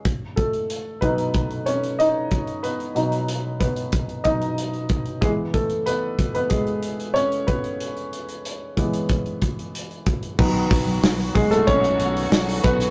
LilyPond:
<<
  \new Staff \with { instrumentName = "Grand piano" } { \time 4/4 \key b \mixolydian \tempo 4 = 93 r8 <a a'>4 <b b'>4 <cis' cis''>8 <dis' dis''>4 | <b b'>4 r8 <b b'>4 dis''4 r8 | <gis gis'>8 <a a'>8 <b b'>8. <b b'>16 <gis gis'>4 <cis' cis''>8 <b b'>8~ | <b b'>2. r4 |
r4. <gis gis'>16 <a a'>16 <cis' cis''>4. <b b'>8 | }
  \new Staff \with { instrumentName = "Grand piano" } { \clef bass \time 4/4 \key b \mixolydian r4. <b, fis dis'>8 r2 | r8 <b, fis dis'>4. r8 <b, fis dis'>8 r4 | <e b>1 | r4. <e gis b>2~ <e gis b>8 |
<dis fis b>4. r2 r8 | }
  \new Staff \with { instrumentName = "String section" } { \clef bass \time 4/4 \key b \mixolydian r1 | r1 | r1 | r1 |
<dis fis b fis'>1 | }
  \new Staff \with { instrumentName = "Fingered electric bass" } { \clef bass \time 4/4 \key b \mixolydian r1 | r1 | r1 | r1 |
b,,8 r16 b,,16 b,,8 b,,8 b,,8 b,,8 b,,8 b,,8 | }
  \new DrumStaff \with { instrumentName = "Drums" } \drummode { \time 4/4 <hh bd>8 <hh bd>16 hh16 hh8 <hh bd>16 hh16 <hh bd>16 hh16 hh16 hh16 hh8 <hh bd>16 hh16 | hh16 hh16 hh16 hh16 hh8 <hh bd>16 hh16 <hh bd>16 hh16 <hh bd>16 hh16 hh16 hh16 <hh bd>16 hh16 | <hh bd>8 <hh bd>16 hh16 hh8 <hh bd>16 hh16 <hh bd>16 hh16 hh16 hh16 hh16 hh16 <hh bd>16 hh16 | hh16 hh16 hh16 hh16 hh8 <hh bd>16 hh16 <hh bd>16 hh16 <hh bd>16 hh16 hh16 hh16 <hh bd>16 hh16 |
<cymc bd>8 <hho hhp bd>16 hho16 <hho hhp sn>16 <hho hhp>16 <hho hhp bd>16 <hho hhp>16 <hho hhp bd>16 hhp16 <hho hhp>16 hho16 <hho hhp sn>16 <hho hhp>16 <hho hhp bd>16 <hho hhp>16 | }
>>